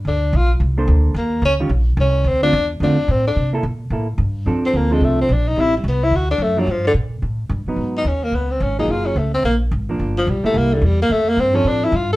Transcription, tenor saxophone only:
X:1
M:4/4
L:1/8
Q:"Swing" 1/4=217
K:F
V:1 name="Tenor saxophone"
D2 F z4 z | B,2 _D z3 D2 | C D2 z D2 C D- | D z6 z |
z C B, _A, =A, C D _E | E G, =B, E ^F D A, ^F, | F, D, z6 | z _E _D B, =B, C D E |
F _D A, C B, z3 | z F, G, A, B, D, G, B, | A, B, C _D =D E F A |]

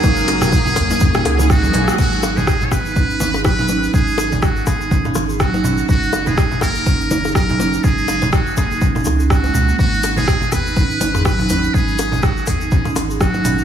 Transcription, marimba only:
X:1
M:4/4
L:1/16
Q:"Swing 16ths" 1/4=123
K:G#m
V:1 name="Marimba"
G, D z4 A, D C D D D G, F, G, A, | G, D z4 B, D C D z G F, D C D | G, D z4 B, D C D z G F, D C D | G, D z4 A, D C D z G F, D C D |
G, D z4 A, D C D D C C G, G, A, | G, D z4 B, D C D z G F, D C D | G, D z4 B, D C D z G F, D C D |]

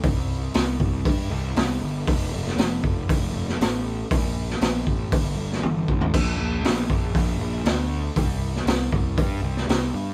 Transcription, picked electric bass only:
X:1
M:4/4
L:1/8
Q:1/4=118
K:Cdor
V:1 name="Picked electric bass" clef=bass
C,,2 C,, C,, G,, C,, C,, G,,, | F,,, F,,, F,,, F,,, F,,, F,,, A,,,2 | B,,,2 B,,, A,,, G,,, G,,, G,,, A,,, | B,,, B,,, B,,, B,,, B,,, B,,, D,,2 |
C,,2 C,, C,, G,, C,, C,, G,, |]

